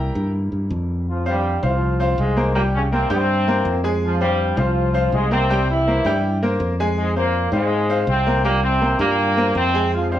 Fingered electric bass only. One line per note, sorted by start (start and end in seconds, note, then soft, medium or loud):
0.15 0.50 G2 medium
0.52 0.69 G2 medium
0.70 1.57 F2 loud
1.63 2.14 C2 loud
2.18 3.04 C2 loud
3.10 3.61 G2 loud
3.65 4.52 F2 loud
4.57 5.09 C2 loud
5.12 5.99 C2 medium
6.05 6.56 G2 loud
6.60 7.46 F2 loud
7.52 8.04 G#2 medium
8.07 8.94 C2 loud
8.99 9.51 G2 loud
9.55 10.19 F2 loud